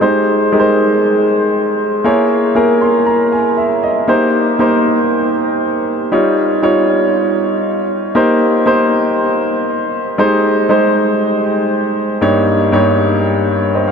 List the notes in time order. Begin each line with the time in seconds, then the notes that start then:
0.01 G#3 D#4 G4 C5
0.52 G#3 D#4 G4 A#4
0.59 C5
2.04 A#3 E4 G#4 C#5
2.55 A#3 E4 G#4 A#4
2.81 C6
3.07 A#5
3.32 G#5
3.58 E5
3.83 D#5
4.08 A#3 D#4 G4 C5
4.59 A#3 D#4 G4 C5
6.12 G3 D#4 F4 C#5
6.62 G3 D#4 F4 C#5
8.15 A#3 D#4 G4 C5
8.66 A#3 D#4 G4 C5
10.18 G#3 D#4 G4 C5
10.69 G#3 D#4 G4 C5
12.21 G2 A#3 D#4 G4 C#5
12.72 G2 A#3 D#4 G4 C#5
13.75 C5 D#5
13.87 C#5 F5